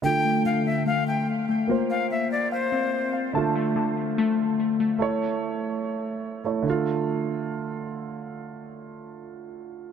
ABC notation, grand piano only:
X:1
M:4/4
L:1/8
Q:1/4=145
K:Dm
V:1 name="Grand piano"
[D,A,F]8 | [B,Fc]8 | [D,A,F]8 | [A,E^c]6- [A,Ec] [A,Ec] |
[D,A,F]8- | [D,A,F]8 |]